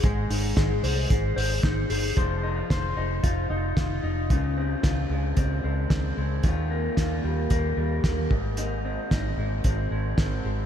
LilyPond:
<<
  \new Staff \with { instrumentName = "Clean electric guitar" } { \time 4/4 \key aes \major \tempo 4 = 112 <aes ees' aes' c''>8 ees'8 aes'8 c''8 aes'8 c''8 ees'8 aes'8 | <f c''>8 ees'16 f'16 c''8 ees'8 f'8 ees'8 f'8 ees'8 | <des f'>8 c'8 f'8 aes8 c'8 aes8 c'8 aes8 | <ees f'>8 bes8 f'8 g8 bes8 g8 bes8 aes,8 |
<aes, ees'>8 c'8 ees'8 aes8 c'8 aes8 c'8 aes8 | }
  \new Staff \with { instrumentName = "Fingered electric bass" } { \clef bass \time 4/4 \key aes \major aes,,8 aes,,8 aes,,8 c,8 aes,,8 aes,,8 aes,,8 g,,8 | f,,4 f,,8 f,,8 f,,8 f,,8 f,,8 f,,8 | des,4 des,8 des,8 des,8 des,8 des,8 des,8 | ees,4 ees,8 ees,8 ees,8 ees,8 ees,8 aes,,8~ |
aes,,4 aes,,8 aes,,8 aes,,8 aes,,8 aes,,8 aes,,8 | }
  \new DrumStaff \with { instrumentName = "Drums" } \drummode { \time 4/4 <hh bd>8 hho8 <hh bd sn>8 hho8 <hh bd>8 hho8 <hh bd sn>8 hho8 | <hh bd>4 <hh bd sn>4 <hh bd>4 <hh bd sn>4 | <hh bd>4 <hh bd sn>4 <hh bd>4 <hh bd sn>4 | <hh bd>4 <hh bd sn>4 <hh bd>4 <hh bd sn>8 bd8 |
hh4 <hh bd sn>4 <hh bd>4 <hh bd sn>4 | }
>>